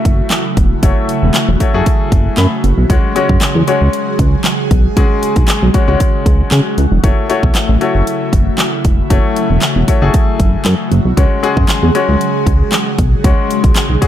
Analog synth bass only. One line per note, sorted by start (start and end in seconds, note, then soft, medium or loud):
0.05 0.22 F#1 loud
0.57 0.74 E1 loud
0.83 0.92 F#1 loud
1.22 1.30 E1 medium
1.49 1.56 E1 medium
1.74 1.82 F#1 loud
2.12 2.29 F#1 loud
2.38 2.47 F#2 loud
2.64 2.73 F#1 medium
2.78 2.86 B1 loud
2.90 2.99 C#2 loud
3.29 3.37 F#2 loud
3.55 3.63 E2 loud
3.81 3.89 C#2 medium
4.19 4.36 C#2 loud
4.71 4.88 B1 medium
4.97 5.06 C#2 loud
5.36 5.44 B1 medium
5.62 5.70 B1 loud
5.88 5.96 C#2 medium
6.26 6.43 C#2 loud
6.52 6.61 C#3 loud
6.78 6.87 C#2 loud
6.92 7.00 E1 loud
7.04 7.13 F#1 loud
7.43 7.51 B1 loud
7.69 7.77 A1 loud
7.95 8.03 F#1 loud
8.33 8.50 F#1 loud
8.85 9.02 E1 loud
9.11 9.19 F#1 loud
9.50 9.58 E1 medium
9.76 9.84 E1 medium
10.02 10.10 F#1 loud
10.40 10.57 F#1 medium
10.66 10.75 F#2 loud
10.92 11.00 F#1 loud
11.05 11.13 B1 loud
11.17 11.26 C#2 loud
11.57 11.65 F#2 loud
11.83 11.91 E2 medium
12.09 12.17 C#2 loud
12.46 12.63 C#2 medium
12.99 13.15 B1 medium
13.24 13.33 C#2 loud
13.64 13.72 B1 medium
13.90 13.98 B1 loud